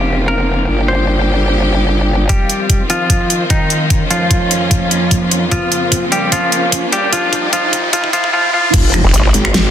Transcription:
Already playing: F1 C#3 F3 A#3 F4 G4
0.28 A#4
0.68 G1 C#3 G3 G4
0.88 C5
2.29 D#3 F3 G3 C4 F4 G4, kick, closed hi-hat, riser
2.49 closed hi-hat
2.70 kick, closed hi-hat
2.90 F3 F4, closed hi-hat
3.10 kick, closed hi-hat
3.30 closed hi-hat
3.50 D#3 D#4, kick, closed hi-hat
3.70 closed hi-hat
3.90 F2 C#4, kick, closed hi-hat
4.11 F3 F4, closed hi-hat
4.31 kick, closed hi-hat
4.51 closed hi-hat
4.71 kick, closed hi-hat
4.91 closed hi-hat
5.11 kick, closed hi-hat
5.31 closed hi-hat
5.51 C#3 F3 A#3 F4, kick, closed hi-hat
5.72 closed hi-hat
5.92 kick, closed hi-hat
6.12 G3 G4, closed hi-hat
6.32 F3 F4, kick, closed hi-hat
6.52 closed hi-hat
6.72 kick, closed hi-hat
6.92 G3 G4, closed hi-hat
7.12 F3 G3 F4 G4, kick, closed hi-hat
7.33 kick, closed hi-hat
7.53 F3 F4, kick, closed hi-hat
7.73 kick, closed hi-hat
7.93 F3 F4, kick, closed hi-hat
8.04 kick
8.13 F3 F4, kick, closed hi-hat
8.24 kick
8.33 F3 F4
8.53 F3 F4
8.74 F1 F3 G#3 C4 G4, kick, closed hi-hat, crash, impact
8.94 finger snap, closed hi-hat
9.04 F1
9.14 G#1, closed hi-hat
9.34 G#1, closed hi-hat
9.45 finger snap
9.54 snare, closed hi-hat

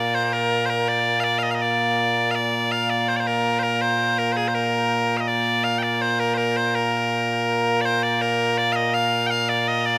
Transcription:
Already playing: A#2 A#3 D5
0.15 C5
0.24 C5
0.33 A#4
0.66 C5
0.70 A#4
0.88 D5
1.20 D5 F5
1.39 F5
1.43 D#5
1.51 D#5 F5
1.62 D5
2.31 F5
2.35 D5
2.72 F5
2.90 D5
3.08 C5
3.16 C5 D5
3.27 A#4
3.59 A#4 C5
3.81 C5
4.18 A#4
4.32 C5
4.37 G#4
4.48 C5
4.55 A#4
5.17 D#5 F5
5.28 D5
5.64 F5
5.79 G5
5.83 D5
6.01 C5
6.20 A#4
6.34 A#4 C5
6.57 C5
6.75 A#4
7.81 D5
7.85 C5
8.03 D5
8.21 A#4
8.58 D5
8.72 D#5 F5
8.94 F5
9.27 F5 G5
9.49 D5
9.68 D#5
9.86 D5

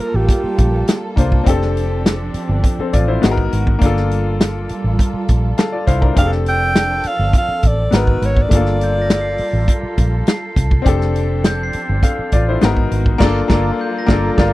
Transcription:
Already playing: G3 A#3 D4 F4 A4
0.01 A#4
0.14 A1 G4
0.29 kick, closed hi-hat
0.44 muted fingered electric bass stroke
0.58 A#1, kick, closed hi-hat
0.88 snare, closed hi-hat
1.16 C2 A#3 D4 F4 C5, kick, closed hi-hat
1.32 kick
1.44 F1 F3 C4 D4 G4, kick, closed hi-hat
1.49 A4
1.62 snare
1.77 closed hi-hat
2.06 snare, closed hi-hat
2.34 muted fingered electric bass stroke, closed hi-hat
2.49 G1
2.64 kick, closed hi-hat
2.79 C4 A4, muted fingered electric bass stroke
2.93 A1 F4 D5, kick, closed hi-hat
3.08 E4 C5
3.22 G#1 G#3 B3 D#4 F#4 G#4, snare, closed hi-hat
3.31 A#4
3.38 kick
3.53 G#1, closed hi-hat
3.67 kick
3.79 G1 G3 A#3 D4 F4 A4, kick, closed hi-hat
3.84 F4 A4
3.97 snare
4.11 closed hi-hat
4.41 snare, closed hi-hat
4.69 muted fingered electric bass stroke, closed hi-hat
4.84 A1
4.99 kick, closed hi-hat
5.14 muted fingered electric bass stroke
5.28 A#1, kick, closed hi-hat
5.58 A4 F5 A5, snare, closed hi-hat
5.72 F4 D5
5.87 C2 E4 C5 F5, kick, closed hi-hat
6.02 D4 A#4, kick
6.14 F1 F3 C4 D4 G4 A4, kick, closed hi-hat
6.19 G#4 F5
6.26 A4
6.32 snare
6.46 G5 E6, closed hi-hat
6.76 snare, closed hi-hat
7.04 muted fingered electric bass stroke, closed hi-hat
7.08 F5
7.19 G1
7.33 kick, closed hi-hat
7.38 F5
7.49 muted fingered electric bass stroke
7.63 A1, kick, closed hi-hat
7.67 D5
7.91 G#1 G#3 B3 D#4 F#4 A#4, snare, closed hi-hat
7.97 B4
8.07 kick
8.22 G#1, closed hi-hat
8.26 C#5
8.37 kick
8.42 D5
8.49 G1 G3 A3 D4 F4 A4, kick, closed hi-hat
8.53 A#3 F4 A4
8.66 snare
8.81 G6, closed hi-hat
9.02 A#6
9.10 snare, closed hi-hat
9.21 C7
9.38 muted fingered electric bass stroke, open hi-hat
9.53 A1
9.68 kick, closed hi-hat
9.83 muted fingered electric bass stroke
9.98 A#1, kick, closed hi-hat
10.27 C7, snare, closed hi-hat
10.56 C2, kick, closed hi-hat
10.71 kick
10.82 F3 C4 D4, kick
10.86 F1 G4 A4, closed hi-hat
11.01 snare
11.16 closed hi-hat
11.44 G6, snare, closed hi-hat
11.63 C7
11.73 muted fingered electric bass stroke, closed hi-hat
11.89 G1
12.03 A4 F5, kick, closed hi-hat
12.19 muted fingered electric bass stroke
12.32 A1 F4 D5, kick, closed hi-hat
12.49 E4 C5
12.61 G#1 G#3 B3 D#4 F#4 A#4, snare, closed hi-hat
12.77 kick
12.92 G#1, closed hi-hat
13.06 kick
13.18 G1 G3 A#3 D4 F4 A4 A#4 D5, kick, snare, crash
13.23 F4 A4
13.48 G1 A#3 D4 A#4 D5, kick, snare
13.52 F4 A4
13.81 G6
13.99 A#6
14.06 G1 A#3 D4 F4 A#4 D5, kick, snare
14.12 A4
14.38 G1 F4 A#4 D5, kick, snare

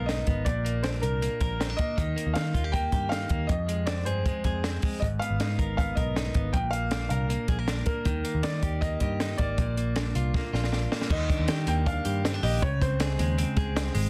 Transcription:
Already playing: B1 G#2 B3 A#4
0.06 D#4 D#5, snare, closed hi-hat
0.27 G#1 B3, kick, closed hi-hat
0.45 A#1 A#2 D5, kick, closed hi-hat
0.65 A#3, closed hi-hat
0.83 D4 C5, snare, closed hi-hat
1.01 C2 A#4, closed hi-hat
1.22 A#3, closed hi-hat
1.41 A#1 A#4, kick, closed hi-hat
1.60 C4, snare, closed hi-hat
1.70 D4
1.77 A#3 D#5, kick, closed hi-hat
1.97 D#2 D#3, kick, closed hi-hat
2.16 A#3, closed hi-hat
2.26 D#2
2.34 D#3 D#4 F5, snare, closed hi-hat
2.54 D#2 F4, kick, closed hi-hat
2.64 G4
2.72 A#3 G5, kick, closed hi-hat
2.92 G2 G4, kick, closed hi-hat
3.09 D#4 F5, snare, closed hi-hat
3.29 D#2 A#3, kick, closed hi-hat
3.47 F2 D#5, kick, closed hi-hat
3.68 G#3, closed hi-hat
3.86 C4 D5, snare, closed hi-hat
4.05 G2 G#4 C5, closed hi-hat
4.26 G#3, kick, closed hi-hat
4.44 F2 G#4, kick, closed hi-hat
4.64 C4, snare, closed hi-hat
4.82 G#3, kick, open hi-hat
5.00 G#1 G#2 D#5, kick, closed hi-hat
5.19 B3 F5, closed hi-hat
5.30 G#1
5.40 G#2 D#4, snare, closed hi-hat
5.59 G#1 A#4, kick, closed hi-hat
5.77 B3 F5, kick, closed hi-hat
5.95 B1 A#4 D#5, kick, closed hi-hat
6.16 D#4, snare, closed hi-hat
6.34 G#1 B3, kick, closed hi-hat
6.53 A#1 A#2 G5, kick, closed hi-hat
6.71 A#3 F5, closed hi-hat
6.91 D4, snare, closed hi-hat
7.09 C2 A#4 F5, closed hi-hat
7.30 A#3, closed hi-hat
7.48 A#1 G#4, kick, closed hi-hat
7.59 A#4
7.68 D4, snare, closed hi-hat
7.86 A#3 A#4, kick, closed hi-hat
8.05 D#2 D#3, kick, closed hi-hat
8.25 A#3, closed hi-hat
8.35 D#2
8.43 D#3 D#4 D5, snare, closed hi-hat
8.63 D#2 G4, kick, closed hi-hat
8.81 A#3 D#5, kick, closed hi-hat
9.00 G2 G4 D#5, kick, closed hi-hat
9.20 D#4, snare, closed hi-hat
9.38 G#1 A#3 D5, kick, closed hi-hat
9.58 A#1 A#2, kick, closed hi-hat
9.77 A#3, closed hi-hat
9.96 D4, snare, closed hi-hat
10.15 C2 F4, closed hi-hat
10.34 A#3, kick, snare
10.53 A#1 F4, snare
10.64 snare
10.72 D4, snare
10.92 A#3, snare
11.01 snare
11.10 D#2 D#3 D#5, kick, crash
11.30 D4, kick, closed hi-hat
11.39 D#2
11.48 D#3 G4, snare, closed hi-hat
11.67 D#2 A#3 G5, closed hi-hat
11.86 D4 F5, kick, closed hi-hat
12.05 G2 G4, closed hi-hat
12.24 C4, snare, closed hi-hat
12.34 D4
12.43 A#1 G4 D#5, open hi-hat
12.62 C#2 C#3 C#5, kick, closed hi-hat
12.81 C4 C5, kick, closed hi-hat
13.00 G#4, snare, closed hi-hat
13.19 D#2 G#3, closed hi-hat
13.38 C4, closed hi-hat
13.57 C#2 G#4, kick, closed hi-hat
13.76 C4, snare, closed hi-hat
13.95 G#1 G#3, open hi-hat

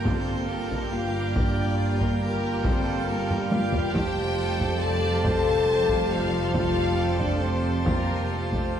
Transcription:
Already playing: G1 G2 G3 A#3 F4 G4 G5
0.05 C4 A4 C5, taiko
0.48 A#3 A#4
0.72 taiko
0.92 F4 G4 F5
1.34 D4 D5, taiko
1.79 F4
1.99 A#3 A#4, taiko
2.21 A#3 G4 A#4
2.64 C4 A4 C5, taiko
3.06 A#3 A#4
3.30 taiko low-mid
3.51 F4 G4 F5, taiko high
3.73 taiko low
3.94 F1 F2 G3 F4 G4 C5 G5 A5, taiko
4.38 A4
4.60 taiko
4.79 A4 D5 A5
5.23 A4 C5 A5, taiko
5.89 taiko
6.11 F4 A4 F5
6.55 F4 F5, taiko
7.20 D4 D5, taiko
7.41 C4 C5
7.85 A#3 F4 A#4, taiko
8.31 A3 A4
8.52 taiko

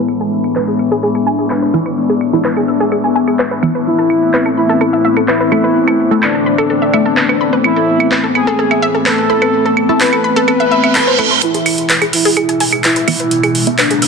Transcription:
Already playing: A2 E3 G#3 B3
0.08 D4, claves
0.21 G#4
0.44 claves
0.56 B4, clap
0.68 G#4
0.79 E6, claves
0.92 G#4
1.03 G#4
1.15 G#5, claves
1.27 G#5
1.39 G#4
1.50 B4, clap, claves
1.62 B4
1.74 E3 B3 E4 E6
1.86 B4, claves
2.10 G#4
2.21 claves
2.33 E3 B3 E4
2.45 B4, clap
2.57 G#4, claves
2.68 E6
2.80 G#4
2.92 G#4, claves
3.04 G#5
3.16 G#5
3.28 G#4, claves
3.39 B4, clap
3.51 B4
3.63 E3 B3 E4 E6, claves
3.75 B4
3.86 A3 C4 E4
3.99 A4
4.10 claves
4.34 B4, clap
4.46 A4, claves
4.57 E4 B5
4.69 A4
4.81 A4, claves
4.93 E5
5.05 E5
5.17 A4, claves
5.28 E4 B4, clap
5.40 B4
5.52 A3 E4 A4 B5, claves
5.64 B4
5.88 A4, claves
6.11 A3 E4 A4
6.23 D4 B4, clap, claves
6.35 A4
6.46 B5
6.58 A4, claves
6.70 A4
6.82 E5
6.93 A3 E4 A4 E5, claves
7.06 A4
7.17 B4, clap
7.29 B4, claves
7.41 B5
7.53 B4
7.64 E4, claves
7.76 A4
8.00 claves
8.12 B4, clap
8.24 A4
8.35 G#4 B5, claves
8.47 A4
8.59 A4
8.71 E5, claves
8.82 E5
8.95 A4
9.06 A4 B4, clap, claves
9.18 B4
9.30 A3 E4 A4 B5
9.42 B4, claves
9.66 A4
9.77 claves
9.89 A3 E4 A4
10.01 B4, clap
10.13 A4, claves
10.24 B5
10.36 A4
10.48 A4, reverse cymbal, claves
10.60 E5
10.71 E5
10.84 E5, claves
10.95 A4, clap
11.07 C5
11.19 A3 E4 A4 B4, claves
11.31 C6
11.42 A2 B2 E3 G#3 E4, closed hi-hat, riser
11.54 G#4, closed hi-hat
11.66 open hi-hat, claves
11.78 closed hi-hat
11.90 B4, clap, closed hi-hat
12.02 G#4, closed hi-hat, claves
12.13 E4 E6, open hi-hat
12.25 G#4, open hi-hat
12.37 G#4, closed hi-hat, claves
12.49 G#5, closed hi-hat
12.60 G#5, open hi-hat
12.73 G#4, closed hi-hat, claves
12.84 E4 B4, clap, closed hi-hat
12.96 B4, closed hi-hat
13.08 E3 B3 E4 E6, open hi-hat, claves
13.20 B4, closed hi-hat
13.31 closed hi-hat
13.43 G#4, closed hi-hat, claves
13.55 open hi-hat
13.67 E3 B3 E4, closed hi-hat
13.79 D4 B4, clap, closed hi-hat, claves
13.91 G#4, closed hi-hat
14.02 E6, open hi-hat

